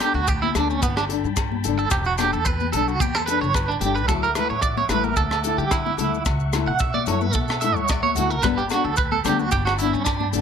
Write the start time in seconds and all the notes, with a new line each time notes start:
Already playing: G5 A5 B5
0.00 G4 A4, cross-stick, closed hi-hat, low agogo, maracas
0.04 D4
0.14 D2 F#4
0.27 G4, kick, maracas
0.42 E4, high conga
0.55 D2 D4 A4, cross-stick, closed hi-hat, low conga, low agogo, maracas
0.70 C#4, high conga, maracas
0.82 G1 B3, kick, maracas
0.97 D4, cross-stick, low agogo, maracas
1.09 D4 A4, closed hi-hat
1.24 G2, low conga, maracas
1.36 kick, cross-stick, low agogo, maracas
1.52 high conga
1.64 G1 D4 A4, closed hi-hat, low conga, maracas
1.78 A4, maracas
1.91 E1 G4, kick, cross-stick, low agogo, maracas
2.04 F#4, maracas
2.18 D4 G4 A4, cross-stick, closed hi-hat, high conga, low agogo, maracas
2.33 E2 A4, maracas
2.45 B4, kick, maracas
2.60 high conga, maracas
2.72 B1 D4 A4, closed hi-hat, low conga, low agogo, maracas
2.88 F#4, maracas
3.00 E2 G4, kick, high conga, maracas
3.15 A4, cross-stick, low agogo, maracas
3.26 A4 B4, closed hi-hat, maracas
3.31 D4
3.41 G1 C#5, maracas
3.54 B4, kick, cross-stick, low agogo, maracas
3.68 D4, maracas
3.80 G1 G4 A4, closed hi-hat, low conga, maracas
3.85 D4
3.96 B4, maracas
4.08 D2 F#3 A3 E4 A4 E5 F#5 D6, kick, cross-stick, low agogo, maracas
4.23 A#4, maracas
4.35 A3 E4 A4 B4, cross-stick, closed hi-hat, low agogo, maracas
4.50 A1 C#5
4.62 D5, kick, maracas
4.77 C#5, high conga
4.89 A1 E4 A4 B4, cross-stick, closed hi-hat, low conga, low agogo, maracas
4.93 A3
5.04 A#4, high conga, maracas
5.16 D2 A4, kick, maracas
5.31 cross-stick, low agogo, maracas
5.44 A3 E4 A4, closed hi-hat, maracas
5.58 D3 G4, low conga, maracas
5.71 E4, kick, cross-stick, low agogo, maracas
5.86 high conga
5.97 D2 A3 E4 A4, closed hi-hat, low conga, maracas
6.14 maracas
6.25 C#2 C#6, kick, cross-stick, low agogo, maracas
6.40 maracas
6.53 A3 E4 A4, cross-stick, closed hi-hat, low agogo, maracas
6.67 B2 F#5
6.79 E5, kick, maracas
6.94 D5, high conga
7.06 F#2 E4 A4 C#5, closed hi-hat, low conga, low agogo, maracas
7.21 B4, high conga, maracas
7.33 B2 A4, kick, maracas
7.48 cross-stick, low agogo, maracas
7.61 E4 A4 E5, closed hi-hat, maracas
7.65 A3
7.76 D2 C#5, low conga, maracas
7.88 D5, kick, cross-stick, low agogo, maracas
8.03 C#5, high conga
8.15 D2 E4 F#4 A4, closed hi-hat, low conga, maracas
8.20 A3
8.30 A#4, maracas
8.43 G1 G3 B3 D4 A4 B4 G5 A5 B5, kick, cross-stick, low agogo, maracas
8.57 G4, maracas
8.70 D4 F#4 A4, cross-stick, closed hi-hat, low agogo, maracas
8.74 B3
8.85 D2 A4
8.96 B4, kick, maracas
9.12 A4, high conga
9.25 D2 B3 D4 G4 A4, cross-stick, closed hi-hat, low conga, low agogo, maracas
9.39 F#4, high conga, maracas
9.51 G1 G4, kick, maracas
9.65 F#4, cross-stick, low agogo, maracas
9.79 D4 E4, closed hi-hat, maracas
9.83 B3
9.93 G2 C#4, low conga, maracas
10.05 D4, kick, cross-stick, low agogo, maracas
10.20 high conga
10.33 G1 B3 D4 A4, closed hi-hat, low conga, maracas